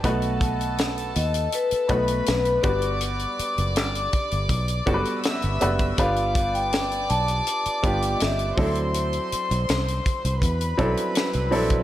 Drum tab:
HH |xxxxxxxxxxxxxxxx|xxxxxxxxxxxxxxxx|xxxxxxxxxxxxxxox|xxxxxxxxxxxxxxox|
SD |----o-------o---|----o-------o---|----o-------o---|----o-------o---|
BD |o-o-------o---o-|------o-o-o----o|o-o-------o---o-|------o-o-o----o|